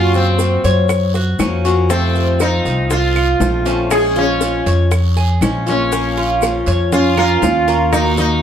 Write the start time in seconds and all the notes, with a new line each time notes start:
Already playing: F#2 C#3 A#3 C#4 F4 F#4
0.14 C4, high bongo, maracas
0.39 A#3 C#4 F#4, high bongo, short guiro, maracas
0.64 F#2 C#5, high bongo, short guiro, maracas
0.89 muted steel-string acoustic guitar stroke, high bongo, long guiro, claves, maracas
1.14 F#4, high bongo, maracas
1.39 F2 F3 A#3 C#4 F#4, high bongo, low bongo, short guiro, claves, maracas
1.65 F3 A#3 C#4 F#4, short guiro, maracas
1.89 C3 F3 A3 C4 F4, high bongo, long guiro, maracas
2.15 high bongo, maracas
2.40 F3 A3 C4 D#4 F4, high bongo, short guiro, claves, maracas
2.65 C2, high bongo, short guiro, maracas
2.90 F4 A4, muted steel-string acoustic guitar stroke, high bongo, long guiro, maracas
3.16 F4, high bongo, claves, maracas
3.40 A#1 F3 A3 C4 F4, high bongo, low bongo, short guiro, maracas
3.65 F3 A3 C4 C#4 F4, short guiro, maracas
3.90 F3 G#3 C#4 F4 G#4, high bongo, long guiro, claves, maracas
4.16 C#4 F4, high bongo, maracas
4.41 F3 G#3 C#4 F4, high bongo, short guiro, maracas
4.66 F2 C#5, high bongo, short guiro, maracas
4.91 muted steel-string acoustic guitar stroke, high bongo, long guiro, claves, maracas
5.16 G#4, high bongo, maracas
5.41 A#1 F3 G#3 C#4 F4, high bongo, low bongo, short guiro, claves, maracas
5.66 G#3 A#3 C#4 F4, short guiro, maracas
5.92 F3 A#3 C#4 F4, high bongo, long guiro, maracas
6.17 F4, high bongo
6.42 F3 A#3 C#4 F4, high bongo, short guiro, claves, maracas
6.66 F2 C#5, short guiro, maracas
6.92 C#4 F4, muted steel-string acoustic guitar stroke, high bongo, long guiro, maracas
7.17 C#4 F4 A#4, high bongo, claves
7.42 D#2 F3 A#3 C#4 F4, high bongo, low bongo, short guiro, maracas
7.68 A#3 C#4 F4 A#4, high bongo, short guiro, maracas
7.93 D#3 A#3 D#4 F#4, high bongo, long guiro, claves, maracas
8.17 A#3 D#4 D#5, high bongo, maracas